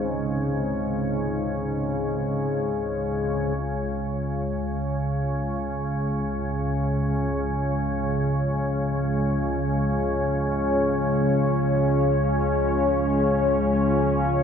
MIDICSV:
0, 0, Header, 1, 4, 480
1, 0, Start_track
1, 0, Key_signature, 7, "major"
1, 0, Tempo, 500000
1, 13856, End_track
2, 0, Start_track
2, 0, Title_t, "Singing bowl"
2, 0, Program_c, 0, 14
2, 3444, Note_on_c, 0, 65, 67
2, 13856, Note_off_c, 0, 65, 0
2, 13856, End_track
3, 0, Start_track
3, 0, Title_t, "Ambient pad"
3, 0, Program_c, 1, 92
3, 0, Note_on_c, 1, 49, 73
3, 0, Note_on_c, 1, 56, 81
3, 0, Note_on_c, 1, 60, 84
3, 0, Note_on_c, 1, 63, 79
3, 0, Note_on_c, 1, 72, 79
3, 3438, Note_off_c, 1, 60, 0
3, 3439, Note_off_c, 1, 63, 0
3, 3447, Note_off_c, 1, 72, 0
3, 3452, Note_off_c, 1, 49, 0
3, 4932, Note_on_c, 1, 61, 90
3, 5095, Note_on_c, 1, 65, 82
3, 6499, Note_on_c, 1, 73, 74
3, 13856, Note_off_c, 1, 56, 0
3, 13856, Note_off_c, 1, 61, 0
3, 13856, Note_off_c, 1, 65, 0
3, 13856, Note_off_c, 1, 73, 0
3, 13856, End_track
4, 0, Start_track
4, 0, Title_t, "Synth drone"
4, 0, Program_c, 2, 95
4, 0, Note_on_c, 2, 37, 67
4, 0, Note_on_c, 2, 49, 64
4, 3439, Note_off_c, 2, 49, 0
4, 3442, Note_off_c, 2, 37, 0
4, 3450, Note_on_c, 2, 49, 68
4, 3454, Note_on_c, 2, 37, 66
4, 13856, Note_off_c, 2, 37, 0
4, 13856, Note_off_c, 2, 49, 0
4, 13856, End_track
0, 0, End_of_file